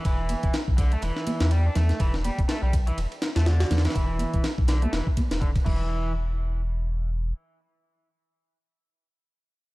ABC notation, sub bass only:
X:1
M:4/4
L:1/16
Q:"Swing 16ths" 1/4=123
K:Em
V:1 name="Sub bass" clef=bass
E,,,2 z E,,, z B,,,2 z E,,, z2 E,,2 z E,, z | E,,,2 z E,,, z B,,,2 z E,,, z2 E,,2 z E,, z | E,,,2 z E,,, z B,,,2 z E,,, z2 E,,,2 z E,,,2- | E,,,12 z4 |
z16 |]